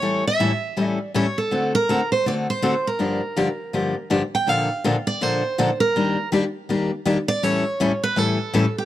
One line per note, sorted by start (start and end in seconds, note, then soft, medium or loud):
0.00 0.23 A2 medium
0.00 0.23 E3 medium
0.00 0.23 G3 medium
0.00 0.23 C#4 medium
0.00 0.23 E4 soft
0.00 0.23 A4 medium
0.00 0.24 C#5 medium
0.27 0.86 E5 medium
0.40 0.51 A2 medium
0.40 0.51 E3 medium
0.40 0.51 G3 medium
0.40 0.51 C#4 medium
0.40 0.51 E4 medium
0.40 0.51 A4 medium
0.77 0.97 A2 medium
0.77 0.98 E3 medium
0.77 0.98 G3 medium
0.77 0.98 C#4 medium
0.77 0.98 E4 medium
0.77 0.98 A4 medium
0.86 1.11 D5 medium
1.14 1.25 A2 medium
1.14 1.25 E3 medium
1.14 1.25 G3 medium
1.14 1.26 C#4 medium
1.14 1.26 E4 medium
1.14 1.26 A4 medium
1.14 1.38 C#5 medium
1.38 1.72 A4 medium
1.51 1.72 D3 medium
1.51 1.72 A3 medium
1.51 1.72 C4 medium
1.51 1.72 F#4 medium
1.51 1.72 A4 medium
1.75 2.09 A#4 medium
1.89 2.00 D3 medium
1.89 2.00 A3 medium
1.89 2.00 C4 medium
1.89 2.00 F#4 medium
1.89 2.00 A4 medium
2.12 2.25 C5 medium
2.26 2.46 D3 soft
2.26 2.46 A3 soft
2.26 2.46 C4 medium
2.26 2.47 F#4 medium
2.26 2.47 A4 medium
2.26 2.34 D5 medium
2.50 2.87 C5 medium
2.62 2.73 D3 medium
2.62 2.73 A3 medium
2.62 2.74 C4 medium
2.62 2.73 F#4 medium
2.62 2.74 A4 medium
2.87 4.08 A#4 medium
2.99 3.20 G2 medium
2.99 3.20 D3 soft
2.99 3.20 F3 medium
2.99 3.20 A#3 medium
2.99 3.20 D4 medium
2.99 3.20 G4 medium
3.36 3.47 G2 medium
3.36 3.48 D3 medium
3.36 3.47 F3 medium
3.36 3.48 A#3 medium
3.36 3.48 D4 medium
3.36 3.48 G4 medium
3.73 3.94 G2 soft
3.73 3.94 D3 medium
3.73 3.94 F3 medium
3.73 3.94 A#3 medium
3.73 3.94 D4 medium
3.73 3.94 G4 medium
4.10 4.21 G2 medium
4.10 4.21 D3 medium
4.10 4.21 F3 medium
4.10 4.21 A#3 medium
4.10 4.21 D4 medium
4.10 4.21 G4 medium
4.35 4.49 G5 medium
4.47 4.67 A#2 medium
4.47 4.68 D3 medium
4.47 4.68 F3 medium
4.47 4.68 A#3 medium
4.47 4.68 D4 medium
4.47 4.68 A4 medium
4.47 5.07 F5 loud
4.84 4.95 A#2 medium
4.84 4.95 D3 medium
4.84 4.95 F3 medium
4.84 4.95 A#3 medium
4.84 4.96 D4 medium
4.84 4.95 A4 medium
5.07 5.23 D5 medium
5.21 5.42 A#2 medium
5.21 5.42 D3 medium
5.21 5.42 F3 medium
5.21 5.42 A#3 medium
5.21 5.42 D4 medium
5.21 5.42 A4 medium
5.21 5.80 C5 medium
5.58 5.69 A#2 medium
5.58 5.69 D3 medium
5.58 5.69 F3 medium
5.58 5.69 A#3 medium
5.58 5.70 D4 medium
5.58 5.70 A4 medium
5.80 6.28 A#4 medium
5.96 6.16 D#3 medium
5.96 6.16 G3 medium
5.96 6.16 A#3 medium
5.96 6.16 D4 medium
5.96 6.16 G4 medium
6.32 6.43 D#3 medium
6.32 6.43 G3 medium
6.32 6.43 A#3 medium
6.32 6.44 D4 medium
6.32 6.44 G4 medium
6.69 6.89 D#3 medium
6.69 6.90 G3 medium
6.69 6.90 A#3 medium
6.69 6.90 D4 medium
6.69 6.90 G4 medium
7.05 7.17 D#3 medium
7.05 7.17 G3 medium
7.05 7.17 A#3 medium
7.05 7.17 D4 medium
7.05 7.17 G4 medium
7.28 7.44 D5 medium
7.43 7.63 A2 medium
7.43 7.63 E3 medium
7.43 7.64 G3 medium
7.43 7.64 C#4 medium
7.43 7.64 E4 medium
7.43 7.64 A4 medium
7.43 8.03 C#5 medium
7.80 7.91 A2 medium
7.80 7.91 E3 medium
7.80 7.91 G3 medium
7.80 7.91 C#4 medium
7.80 7.91 E4 medium
7.80 7.91 A4 medium
8.03 8.18 B4 medium
8.16 8.37 A2 medium
8.16 8.37 E3 medium
8.16 8.37 G3 medium
8.16 8.38 C#4 medium
8.16 8.38 E4 medium
8.16 8.38 A4 medium
8.16 8.77 A4 medium
8.53 8.65 A2 medium
8.53 8.65 E3 medium
8.53 8.65 G3 medium
8.53 8.65 C#4 medium
8.53 8.65 E4 medium
8.53 8.65 A4 medium
8.78 8.85 G4 medium